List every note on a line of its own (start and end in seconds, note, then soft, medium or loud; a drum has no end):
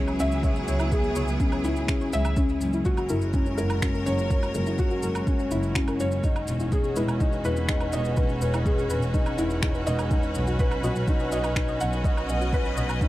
0.00 2.37 F#3 medium
0.00 2.37 B3 medium
0.00 1.40 C#4 medium
0.00 1.65 E4 medium
0.00 3.92 E4 medium
0.00 0.93 G#4 medium
0.00 3.31 G#4 medium
0.00 0.68 C#5 loud
0.07 0.12 C#5 medium
0.07 low woodblock medium
0.07 shaker soft
0.19 0.38 C#2 loud
0.19 0.25 C#4 medium
0.19 0.43 E5 loud
0.19 shaker medium
0.32 shaker soft
0.43 0.51 C#4 medium
0.43 0.67 E5 medium
0.43 kick medium
0.43 shaker soft
0.56 shaker soft
0.68 0.87 C#2 medium
0.68 0.91 C#5 medium
0.68 shaker medium
0.80 0.85 E4 medium
0.80 low woodblock medium
0.80 shaker soft
0.92 1.15 G#4 loud
0.92 kick loud
0.92 shaker soft
1.04 1.09 G#4 medium
1.04 shaker soft
1.15 1.26 C#2 loud
1.15 1.21 C#5 loud
1.15 shaker medium
1.28 1.47 C#2 medium
1.28 shaker soft
1.40 1.63 C#4 medium
1.40 kick loud
1.40 shaker soft
1.52 1.56 C#4 medium
1.52 low woodblock medium
1.52 shaker soft
1.64 1.83 C#2 medium
1.64 1.88 E4 loud
1.64 1.72 E4 medium
1.64 shaker medium
1.76 shaker soft
1.88 2.12 C#4 medium
1.88 1.94 G#4 medium
1.88 finger snap medium
1.88 kick loud
1.88 shaker soft
2.01 2.06 C#5 medium
2.01 shaker soft
2.13 2.32 C#2 loud
2.13 2.18 C#4 loud
2.13 2.36 E5 loud
2.13 shaker medium
2.25 low woodblock medium
2.25 shaker soft
2.36 10.11 G#3 medium
2.36 2.45 C#4 medium
2.36 2.60 C#4 medium
2.36 kick loud
2.36 shaker soft
2.49 shaker soft
2.61 2.80 F#1 loud
2.61 shaker medium
2.67 13.08 C#4 loud
2.73 2.79 E4 medium
2.73 shaker soft
2.85 3.09 F#4 loud
2.85 kick medium
2.85 shaker soft
2.89 6.24 A#4 medium
2.97 3.03 F#4 medium
2.97 low woodblock medium
2.97 shaker soft
3.09 3.19 F#1 loud
3.09 3.33 E4 medium
3.09 3.15 A#4 loud
3.09 shaker medium
3.21 3.41 F#1 medium
3.21 shaker soft
3.33 3.57 C#4 medium
3.33 kick loud
3.33 shaker soft
3.46 3.49 C#4 medium
3.46 shaker soft
3.58 3.77 F#1 medium
3.58 3.66 E4 medium
3.58 13.08 F#4 medium
3.58 3.81 A#4 loud
3.58 shaker medium
3.70 low woodblock medium
3.70 shaker soft
3.82 4.05 C#4 medium
3.82 3.88 F#4 medium
3.82 finger snap medium
3.82 kick medium
3.82 shaker soft
3.94 3.99 A#4 medium
3.94 shaker soft
4.06 4.25 F#1 loud
4.06 4.12 C#4 loud
4.06 4.29 C#5 loud
4.06 shaker medium
4.19 shaker soft
4.30 4.39 C#4 medium
4.30 4.54 C#5 medium
4.30 kick loud
4.30 shaker soft
4.43 low woodblock medium
4.43 shaker soft
4.54 4.74 F#1 loud
4.54 4.78 A#4 medium
4.54 shaker medium
4.66 4.72 E4 medium
4.66 shaker soft
4.78 5.02 F#4 loud
4.78 kick medium
4.78 shaker soft
4.91 4.96 F#4 medium
4.91 shaker soft
5.03 5.13 F#1 medium
5.03 5.08 A#4 loud
5.03 shaker medium
5.15 5.34 F#1 medium
5.15 low woodblock medium
5.15 shaker soft
5.27 5.50 C#4 medium
5.27 kick medium
5.27 shaker soft
5.39 5.43 C#4 medium
5.39 shaker soft
5.51 5.70 F#1 medium
5.51 5.75 E4 medium
5.51 5.59 E4 medium
5.51 shaker medium
5.63 shaker soft
5.75 5.99 C#4 medium
5.75 5.81 F#4 medium
5.75 finger snap medium
5.75 kick medium
5.75 shaker soft
5.88 5.93 A#4 medium
5.88 low woodblock medium
5.88 shaker soft
5.99 6.18 F#1 medium
5.99 6.05 C#4 loud
5.99 6.23 C#5 loud
5.99 shaker medium
6.12 shaker soft
6.24 6.32 D#4 medium
6.24 6.47 D#4 medium
6.24 kick loud
6.24 shaker soft
6.36 low woodblock medium
6.36 shaker soft
6.48 6.67 E1 loud
6.48 shaker medium
6.60 6.66 E4 medium
6.60 shaker soft
6.72 6.96 G#4 loud
6.72 kick medium
6.72 shaker soft
6.84 6.90 G#4 medium
6.84 shaker soft
6.94 7.06 E1 loud
6.94 7.20 E4 medium
6.94 13.08 B4 medium
6.94 7.02 B4 loud
6.94 shaker medium
7.08 7.28 E1 medium
7.08 low woodblock medium
7.08 shaker soft
7.20 7.44 D#4 medium
7.20 kick loud
7.20 shaker soft
7.32 7.36 D#4 medium
7.32 shaker soft
7.44 7.64 E1 medium
7.44 7.53 E4 medium
7.44 7.68 B4 loud
7.44 shaker medium
7.56 shaker soft
7.69 7.92 D#4 medium
7.69 7.75 G#4 medium
7.69 finger snap medium
7.69 kick loud
7.69 shaker soft
7.80 7.87 B4 medium
7.80 low woodblock medium
7.80 shaker soft
7.93 8.12 E1 loud
7.93 7.99 D#4 loud
7.93 8.16 D#5 loud
7.93 shaker medium
8.05 shaker soft
8.17 8.26 D#4 medium
8.17 8.31 B4 medium
8.17 kick loud
8.17 shaker soft
8.29 shaker soft
8.41 8.61 E1 loud
8.41 8.65 B4 medium
8.41 shaker medium
8.54 8.59 E4 medium
8.54 low woodblock medium
8.54 shaker soft
8.66 8.89 G#4 medium
8.66 kick loud
8.66 shaker soft
8.78 8.83 G#4 medium
8.78 shaker soft
8.90 9.00 E1 loud
8.90 8.95 B4 loud
8.90 shaker medium
9.02 9.21 E1 medium
9.02 shaker soft
9.14 9.37 D#4 medium
9.14 kick loud
9.14 shaker soft
9.26 9.30 D#4 medium
9.26 low woodblock medium
9.26 shaker soft
9.38 9.57 E1 medium
9.38 9.61 E4 loud
9.38 9.46 E4 medium
9.38 shaker medium
9.50 shaker soft
9.62 9.86 D#4 medium
9.62 9.68 G#4 medium
9.62 finger snap medium
9.62 kick loud
9.62 shaker soft
9.75 9.80 B4 medium
9.75 shaker soft
9.87 10.06 E1 loud
9.87 9.92 D#4 medium
9.87 10.10 D#5 loud
9.87 shaker medium
9.99 low woodblock medium
9.99 shaker soft
10.11 10.19 D#4 medium
10.11 10.34 D#4 medium
10.11 kick loud
10.11 shaker soft
10.23 shaker soft
10.35 10.54 B1 loud
10.35 shaker medium
10.47 10.53 F#4 medium
10.47 shaker soft
10.59 10.83 B4 loud
10.59 kick loud
10.59 shaker soft
10.71 10.77 B4 medium
10.71 low woodblock medium
10.71 shaker soft
10.83 10.93 B1 loud
10.83 11.07 F#4 medium
10.83 10.89 D#5 loud
10.83 shaker medium
10.96 11.15 B1 medium
10.96 shaker soft
11.08 11.31 D#4 medium
11.08 kick loud
11.08 shaker soft
11.20 11.23 D#4 medium
11.20 shaker soft
11.32 11.51 B1 medium
11.32 11.40 F#4 medium
11.32 11.55 D#5 loud
11.32 shaker medium
11.44 low woodblock medium
11.44 shaker soft
11.56 11.79 D#4 medium
11.56 11.62 B4 medium
11.56 finger snap medium
11.56 kick loud
11.56 shaker soft
11.68 11.74 D#5 medium
11.68 shaker soft
11.80 11.99 B1 loud
11.80 11.86 D#4 loud
11.80 12.04 F#5 loud
11.80 shaker medium
11.86 13.08 D#5 medium
11.93 shaker soft
12.04 12.13 D#4 medium
12.04 12.19 D#5 medium
12.04 kick loud
12.04 shaker soft
12.17 low woodblock medium
12.17 shaker soft
12.29 12.48 B1 medium
12.29 12.52 D#5 medium
12.29 shaker medium
12.41 12.46 F#4 medium
12.41 shaker soft
12.53 12.76 B4 loud
12.53 kick loud
12.53 shaker soft
12.65 12.70 B4 medium
12.65 shaker soft
12.77 12.87 B1 loud
12.77 12.82 D#5 loud
12.77 shaker medium
12.89 13.08 B1 medium
12.89 low woodblock medium
12.89 shaker soft
13.01 13.08 D#4 medium
13.01 kick loud
13.01 shaker soft